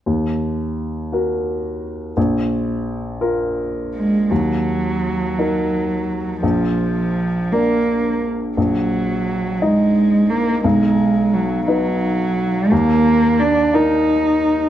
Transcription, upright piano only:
\new Staff \with { instrumentName = "Upright piano" } { \time 6/8 \key ees \minor \tempo 4. = 58 ees,4. <ges' bes'>4. | bes,,4. <f' bes'>4. | ees,4. <ees' bes'>4. | bes,,4. <d' bes'>4. |
bes,,4. <ees' ees''>4. | b,,4. <dis' b'>4. | ees,4. <ees' bes'>4. | }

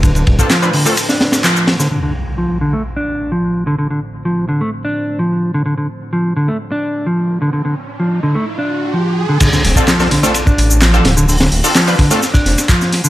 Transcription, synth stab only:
\new Staff \with { instrumentName = "Synth stab" } { \time 4/4 \key d \dorian \tempo 4 = 128 r8. <c' d' f' a'>16 r16 <c' d' f' b'>16 r16 <c' d' f' a'>16 r2 | r1 | r1 | r1 |
r1 | r8. <c' d' f' a'>16 r16 <c' d' f' a'>16 r16 <c' d' f' a'>16 r4 r16 <c' d' f' a'>16 r8 | r8. <c' d' f' a'>16 r16 <c' d' f' b'>16 r16 <c' d' f' a'>16 r2 | }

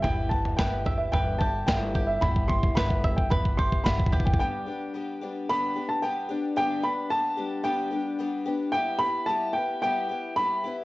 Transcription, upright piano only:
\new Staff \with { instrumentName = "Upright piano" } { \time 4/4 \key g \major \tempo 4 = 111 g''8 a''8 g''8. e''16 g''8 a''8 g''8. e''16 | b''8 c'''8 b''8. g''16 b''8 c'''8 b''8. g''16 | g''2 b''8. a''16 g''8. r16 | g''8 b''8 a''4 g''4. r8 |
g''8 b''8 a''8 g''8 g''4 b''8. r16 | }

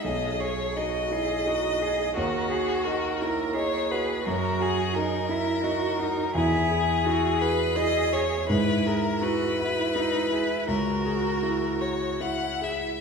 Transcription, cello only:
\new Staff \with { instrumentName = "Cello" } { \time 3/4 \key e \lydian \tempo 4 = 84 gis'4 fis'8 gis'8 fis'8 gis'8 | ais'8 gis'8 ais'4 gis'4 | fis'4 dis'8 e'8 fis'8 dis'8 | e'4 fis'8 gis'4. |
e'4 fis'8 e'8 dis'8 e'8 | fis'2 e'4 | }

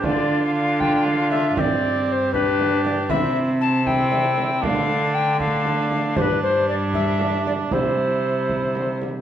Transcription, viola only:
\new Staff \with { instrumentName = "Viola" } { \time 6/8 \key c \major \tempo 4. = 78 d'2. | c'4. d'4. | c'4. c'4. | a4. a4. |
g2. | g2~ g8 r8 | }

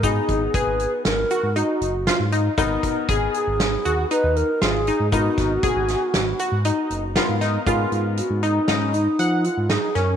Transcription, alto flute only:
\new Staff \with { instrumentName = "Alto flute" } { \time 5/4 \key gis \dorian \tempo 4 = 118 gis'4 b'4 ais'4 fis'4. r8 | r4. gis'4. b'8 ais'8 gis'4 | fis'1 r4 | r4 fis'8 dis'8 cis'8 dis'4 eis'8 gis'8 ais'8 | }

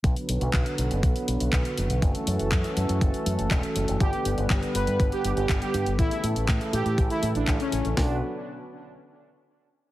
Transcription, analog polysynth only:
\new Staff \with { instrumentName = "Analog polysynth" } { \time 4/4 \key b \minor \tempo 4 = 121 r1 | r1 | g'8 r4 b'8 r16 g'8 g'8 g'8 r16 | e'8 r4 g'8 r16 e'8 d'8 cis'8 r16 |
d'8 r2. r8 | }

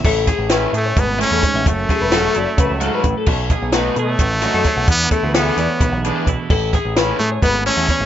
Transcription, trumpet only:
\new Staff \with { instrumentName = "Trumpet" } { \time 7/8 \key a \major \tempo 4 = 130 r4. a8 b8 cis'4 | a2. r8 | r4. a2 | b8 a8 b4. r4 |
r4. a8 b8 cis'4 | }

